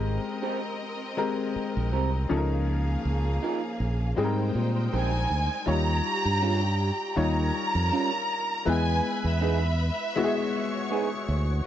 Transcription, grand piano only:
Already playing: G#3 C4 G4 A#4
1.17 G#3 C4 G4 A#4
2.29 F3 C#4 D#4 A4
2.37 A#4
4.16 G3 G#3 C4 G#4
4.24 A#4
5.66 G3 D#4 F4 C#5
7.16 G3 D#4 F4 C#5
8.65 G#3 B3 E4 B4
10.16 G#3 B3 E4 F#4
10.24 G#4

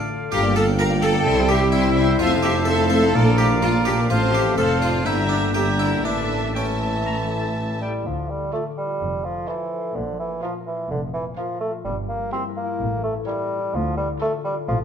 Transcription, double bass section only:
0.32 G1
1.27 C2
2.21 F2
3.15 A#1
4.11 A1
4.58 F1
5.06 G1
6.04 A1
8.06 D2
9.01 F1
9.96 A#1
10.91 F1
11.86 G1
12.81 A1
13.75 D2
14.69 A1

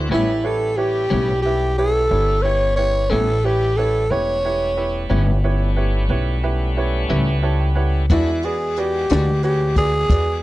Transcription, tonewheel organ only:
0.13 G3 B3 C#4 A4
4.11 G3 A3 B3 C#4
8.12 E3 G#3 D5 F#5

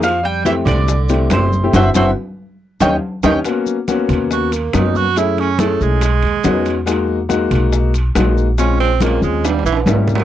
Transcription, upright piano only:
0.46 A3 C4 E4 G4
1.09 A3 C4 E4 G4
1.63 A3 C4 E4 G4
1.75 C4 E4 F#4
1.96 C4 E4 F#4
2.81 C#4 D#4 G4
3.24 C#4 D#4 G4
3.45 A#3 B3 C#4 F#4
3.88 A#3 B3 C#4 F#4
4.74 A#3 B3 C#4 F#4
5.17 A3 C#4 E4 G#4
5.59 A3 C#4 E4 G#4
6.44 B3 C#4 D#4 F#4
6.86 G#3 A#3 D#4 F#4
7.29 G#3 A#3 D#4 F#4
8.15 G#3 A#3 D#4 F#4
8.58 G#3 C4 C#4 F4
9.01 G#3 C4 C#4 F4
9.87 G3 A#3 C#4 E4

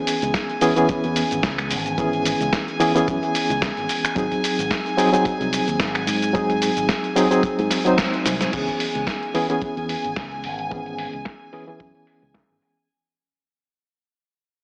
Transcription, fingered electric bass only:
0.22 C#2
0.89 muted fingered electric bass stroke
1.04 E2
1.32 G#1
1.43 C#2
1.71 G#1
2.41 C#2
3.08 F#2
3.50 C#2
3.77 G#1
4.16 G#1
4.59 G#1
5.25 muted fingered electric bass stroke
5.40 C2
5.67 D#2
5.80 G#1
6.07 G#2
6.77 G#1
7.59 G#2
8.26 C2
8.53 C#2
8.95 C#2
9.62 muted fingered electric bass stroke
9.77 E2
10.04 G#1
10.16 C#2
10.44 G#1
11.13 C#2
11.80 F#2
12.22 C#2
12.50 G#1

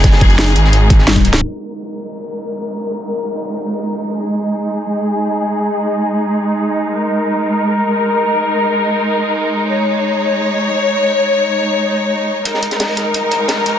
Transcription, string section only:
Already playing: G#3 D#4 G#4
1.42 G#3 D#4 A#4
4.18 G#4
6.94 A#4
9.70 C#5
12.46 G#3 D#4 A#4

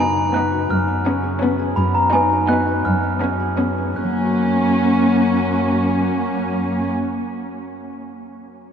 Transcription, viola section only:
Already playing: B3
0.34 B3
1.05 B3
1.41 B3
2.12 B3
2.49 B3
3.21 B3
3.58 B3
3.96 A#3

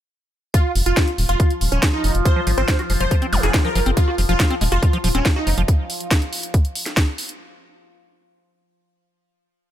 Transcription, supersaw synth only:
0.54 F4
0.86 F4
1.29 F4
1.72 C#4
1.93 D#4
2.25 C5
2.58 C5
3.00 C5
3.43 G#4
3.65 A#4
3.97 F4
4.29 F4
4.72 F4
5.15 C#4
5.36 D#4

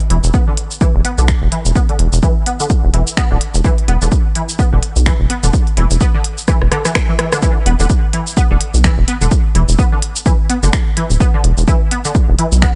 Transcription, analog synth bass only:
0.10 E1
0.24 E1
0.95 E1
1.18 B1
1.42 E1
1.65 E1
1.99 E1
2.13 E1
2.84 E1
2.94 E1
3.31 D1
3.54 E1
3.88 E1
4.02 E1
4.73 E1
4.96 B1
5.20 E1
5.43 E1
5.77 E1
5.91 E1
6.62 E1
7.66 E1
7.80 E1
8.51 E1
8.74 B1
8.98 E1
9.21 E1
9.55 E1
9.69 E1
10.63 F#1
11.10 D1
11.44 E1
11.58 E1
12.29 E1
12.52 B1

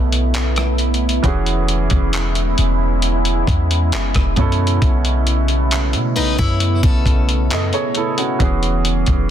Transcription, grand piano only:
Already playing: B2 B3 C#4 E4 A4
1.22 E3 B3 C#4 F#4
1.27 G#4
4.36 B2 B3 C#4 E4
4.40 A4
7.51 A4 D#5
7.74 G#4 C#5
7.96 E4 A4
8.18 C#4 F#4
8.39 E3 B3 C#4 F#4
8.43 G#4

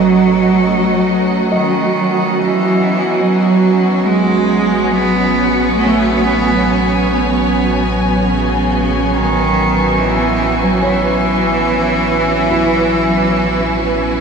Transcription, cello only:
Already playing: F#3
1.54 D#3
2.38 E3
3.20 F#3
4.05 G#3
4.91 B3
5.76 A3
6.18 B3
8.28 C#3
9.13 D#3
9.97 E3
10.61 F#3
10.83 E3

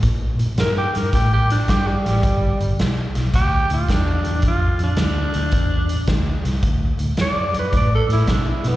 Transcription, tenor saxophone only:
0.60 A#4
0.78 G4
0.97 A#4
1.14 G4
1.33 G4
1.51 D4
1.70 G4
1.87 G3
3.35 G4
3.73 F4
3.92 D4
4.48 F4
4.84 D4
7.21 D5
7.59 B4
7.77 D5
7.95 A4
8.13 E4
8.31 D4
8.49 E4
8.68 B3

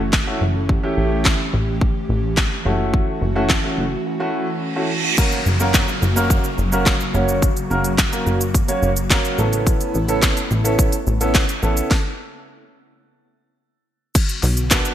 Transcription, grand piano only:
0.27 A3 C#4 E4 F#4
0.55 E4 A4
0.69 E4 G4
0.83 A3 C#4 E4 G4
2.65 A3 C#4 E4 F#4
3.35 A3 C#4 E4 F#4
3.64 A3 C#4 E4 F#4
4.06 E4 F#4
4.20 A3 C#4 E4 F#4
4.76 A3 C#4 E4 F#4
5.04 E4 F#4
5.18 A#3 C#4 F#4 A#4
5.60 A#3 C#4 F#4 A#4
6.16 A#3 C#4 F#4 A#4
6.72 A#3 C#4 F#4 A#4
7.14 A#3 C#4 F#4 C#5
7.70 A#3 C#4 F#4 A#4
8.12 A#3 C#4 F#4 A#4
8.68 A#3 C#4 F#4 C#5
9.10 A#3 C#4 F#4 A#4
9.38 B3 C#4 E4 A4
10.08 B3 C#4 E4 A4
10.64 B3 C#4 E4 A4
11.21 B3 C#4 E4 A4
11.63 B3 C#4 E4 A4
14.71 B3 D4 F#4 B4

